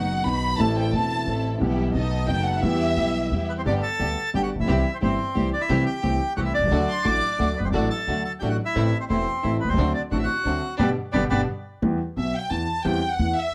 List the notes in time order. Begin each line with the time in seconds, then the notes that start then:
Already playing: F#1 F#2 D#3 F#3 B3 D#4 F#4 F#5
0.23 B1 B2 D#3 F#3 B3 D#4 F#4 B5
0.57 A1 A2 E3 A3 C4 E4 A4 A5
0.73 A5
0.77 G5
0.92 E1 E2 E3 A3 C4 E4 A4 A5
1.25 A1 A2 E3 A3 C4 E4 A4
1.29 A4
1.59 B1 B2 E3 G3 B3 E4 G4
1.93 B1 B2 D#3 A3 B3 D#4 F#4 A4 D#5
2.26 F#1 F#2 D#3 A3 B3 D#4 F#4 A4 G5
2.44 F#5
2.60 E2 E3 G3 B3 E4 G4 E5
2.65 G4
2.95 B1 B2 E3 G3 B3 E4 G4
3.29 E2 E3 G3 B3 E4 G4
3.48 B3 B4
3.58 C4 C5
3.65 G1 G2 D3 G3 B3 D4 G4 D5
3.82 A4 A5
3.99 D2 D3 G3 B3 D4 G4
4.34 G1 G2 D3 G3 B3 D4 G4 G5
4.42 F#4 F#5
4.55 A1
4.60 A#1 E4 E5
4.64 B1 C2 E3 C4 E4 G4
4.68 C2 C3 G3 C4 G4
4.93 C4 C5
5.02 G1 G2 E3 G3 C4 E4 G4 C5
5.35 C2 C3 E3 G3 C4 E4 G4
5.53 D4 D5
5.61 E4 E5
5.69 C2 C3 E3 A3 C4 G4
5.86 G4 G5
6.03 C2 C3 E3 A3 C4 G4
6.36 C2 C3 E3 A3 C4 F#4 G4 F#5
6.45 E4 E5
6.54 D4 D5
6.59 B1 C2
6.63 C2 C#2
6.68 C#2 D2 F#3 A3 D4 F#4
6.72 D2 D3 A3 D4 A4
6.89 C6
7.05 A1 A2 F#3 A3 D4 F#4 A4 D6
7.39 D2 D3 F#3 A3 D4 F#4 A4
7.57 F#1 B3 B4
7.64 G1 C4 C5
7.69 G#1 A3 D4 D5
7.73 A1 A2 F#3 A3 D4 F#4 A4
7.90 A4 A5
8.07 D2 D3 F#3 A3 D4 F#4 A4
8.24 A4 A5
8.40 A1 A2 F#3 A3 D4 F#4 G4 A4 G5
8.49 F#4 F#5
8.65 E4 E5
8.75 A1 A2 E3 A3 C4 E4 A4
9.00 C4 C5
9.09 E1 E2 E3 A3 C4 E4 A4 C5
9.43 A1 A2 E3 A3 C4 E4 A4
9.60 B3 B4
9.65 B1 C5
9.69 C2 C4
9.74 C#2 F#3
9.78 D2 D3 A3 C4 D4 F#4
9.94 D4 D5
10.11 A1 A2 D3 F#3 A3 C4 D4 F#4 F#5
10.18 E5
10.24 F#4 F#5
10.45 D2 D3 F#3 A3 C4 D4 F#4
10.78 G1 B2 D3 G3 B3 D4 G4 B4 D5
11.13 G1 B2 D3 G3 B3 D4 G4 B4 D5
11.30 G1 B2 D3 G3 B3 D4 G4 B4 D5
11.82 E2 E3 G3 B3 G4
12.16 B1 B2 E5
12.35 G5
12.50 E2 E3 A5
12.85 E2 E3 G3 C4 G4 G5
13.11 F#5
13.19 E2 E3
13.37 E5